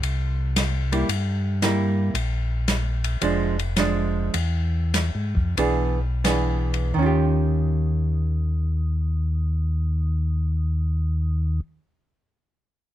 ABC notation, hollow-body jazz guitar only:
X:1
M:4/4
L:1/8
Q:"Swing" 1/4=93
K:Ebmix
V:1 name="Hollow-body jazz guitar"
z3 [G,B,=E] z2 [G,B,E]2 | z4 [F,A,=D] z [F,A,D]2 | z4 [=E,=B,=D^G] z [E,B,DG]2 | [E,DFG]8- |
[E,DFG]8 |]